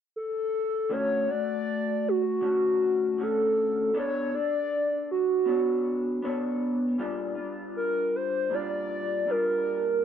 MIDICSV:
0, 0, Header, 1, 3, 480
1, 0, Start_track
1, 0, Key_signature, 2, "major"
1, 0, Tempo, 761421
1, 563, Time_signature, 4, 2, 24, 8
1, 6333, End_track
2, 0, Start_track
2, 0, Title_t, "Soft synth lead"
2, 0, Program_c, 0, 80
2, 101, Note_on_c, 0, 69, 89
2, 580, Note_on_c, 0, 73, 103
2, 590, Note_off_c, 0, 69, 0
2, 820, Note_on_c, 0, 74, 116
2, 830, Note_off_c, 0, 73, 0
2, 1313, Note_on_c, 0, 66, 105
2, 1323, Note_off_c, 0, 74, 0
2, 2032, Note_on_c, 0, 69, 89
2, 2041, Note_off_c, 0, 66, 0
2, 2498, Note_off_c, 0, 69, 0
2, 2513, Note_on_c, 0, 73, 95
2, 2740, Note_on_c, 0, 74, 109
2, 2749, Note_off_c, 0, 73, 0
2, 3212, Note_off_c, 0, 74, 0
2, 3223, Note_on_c, 0, 66, 90
2, 4149, Note_off_c, 0, 66, 0
2, 4895, Note_on_c, 0, 70, 98
2, 5142, Note_on_c, 0, 72, 100
2, 5151, Note_off_c, 0, 70, 0
2, 5386, Note_on_c, 0, 74, 105
2, 5395, Note_off_c, 0, 72, 0
2, 5865, Note_on_c, 0, 70, 107
2, 5874, Note_off_c, 0, 74, 0
2, 6333, Note_off_c, 0, 70, 0
2, 6333, End_track
3, 0, Start_track
3, 0, Title_t, "Clean electric guitar"
3, 0, Program_c, 1, 27
3, 563, Note_on_c, 1, 50, 60
3, 569, Note_on_c, 1, 57, 70
3, 573, Note_on_c, 1, 61, 69
3, 577, Note_on_c, 1, 66, 69
3, 796, Note_off_c, 1, 66, 0
3, 803, Note_off_c, 1, 50, 0
3, 804, Note_on_c, 1, 66, 44
3, 806, Note_off_c, 1, 57, 0
3, 808, Note_off_c, 1, 61, 0
3, 823, Note_on_c, 1, 57, 34
3, 1519, Note_on_c, 1, 50, 53
3, 1522, Note_off_c, 1, 57, 0
3, 1525, Note_on_c, 1, 57, 53
3, 1531, Note_on_c, 1, 61, 54
3, 1536, Note_off_c, 1, 66, 0
3, 1539, Note_on_c, 1, 66, 46
3, 1997, Note_off_c, 1, 50, 0
3, 2000, Note_on_c, 1, 50, 52
3, 2004, Note_off_c, 1, 57, 0
3, 2007, Note_on_c, 1, 57, 49
3, 2013, Note_off_c, 1, 61, 0
3, 2015, Note_off_c, 1, 66, 0
3, 2016, Note_on_c, 1, 61, 49
3, 2018, Note_on_c, 1, 66, 59
3, 2481, Note_off_c, 1, 57, 0
3, 2484, Note_on_c, 1, 59, 60
3, 2485, Note_off_c, 1, 61, 0
3, 2488, Note_on_c, 1, 62, 77
3, 2489, Note_off_c, 1, 66, 0
3, 2492, Note_on_c, 1, 69, 67
3, 2496, Note_on_c, 1, 73, 73
3, 2515, Note_off_c, 1, 50, 0
3, 2722, Note_off_c, 1, 69, 0
3, 2724, Note_off_c, 1, 59, 0
3, 2726, Note_off_c, 1, 62, 0
3, 2729, Note_on_c, 1, 69, 38
3, 2730, Note_off_c, 1, 73, 0
3, 2738, Note_on_c, 1, 62, 35
3, 3440, Note_on_c, 1, 59, 49
3, 3442, Note_off_c, 1, 62, 0
3, 3445, Note_off_c, 1, 69, 0
3, 3445, Note_on_c, 1, 62, 53
3, 3452, Note_on_c, 1, 69, 52
3, 3455, Note_on_c, 1, 73, 47
3, 3916, Note_off_c, 1, 59, 0
3, 3924, Note_on_c, 1, 59, 62
3, 3928, Note_off_c, 1, 62, 0
3, 3928, Note_off_c, 1, 69, 0
3, 3930, Note_off_c, 1, 73, 0
3, 3931, Note_on_c, 1, 62, 55
3, 3937, Note_on_c, 1, 69, 59
3, 3939, Note_on_c, 1, 73, 70
3, 4402, Note_on_c, 1, 46, 70
3, 4404, Note_off_c, 1, 59, 0
3, 4407, Note_on_c, 1, 55, 80
3, 4409, Note_off_c, 1, 62, 0
3, 4410, Note_off_c, 1, 69, 0
3, 4412, Note_off_c, 1, 73, 0
3, 4412, Note_on_c, 1, 62, 85
3, 4414, Note_on_c, 1, 65, 82
3, 4627, Note_off_c, 1, 65, 0
3, 4634, Note_on_c, 1, 65, 44
3, 4637, Note_off_c, 1, 62, 0
3, 4643, Note_off_c, 1, 46, 0
3, 4644, Note_on_c, 1, 62, 46
3, 4646, Note_off_c, 1, 55, 0
3, 4653, Note_on_c, 1, 55, 33
3, 5356, Note_on_c, 1, 46, 44
3, 5360, Note_off_c, 1, 65, 0
3, 5362, Note_off_c, 1, 55, 0
3, 5362, Note_off_c, 1, 62, 0
3, 5364, Note_on_c, 1, 55, 54
3, 5370, Note_on_c, 1, 62, 49
3, 5378, Note_on_c, 1, 65, 55
3, 5832, Note_off_c, 1, 46, 0
3, 5839, Note_on_c, 1, 46, 48
3, 5844, Note_off_c, 1, 62, 0
3, 5846, Note_off_c, 1, 55, 0
3, 5848, Note_on_c, 1, 55, 57
3, 5849, Note_off_c, 1, 65, 0
3, 5852, Note_on_c, 1, 62, 59
3, 5857, Note_on_c, 1, 65, 63
3, 6319, Note_off_c, 1, 46, 0
3, 6327, Note_off_c, 1, 55, 0
3, 6328, Note_off_c, 1, 62, 0
3, 6331, Note_off_c, 1, 65, 0
3, 6333, End_track
0, 0, End_of_file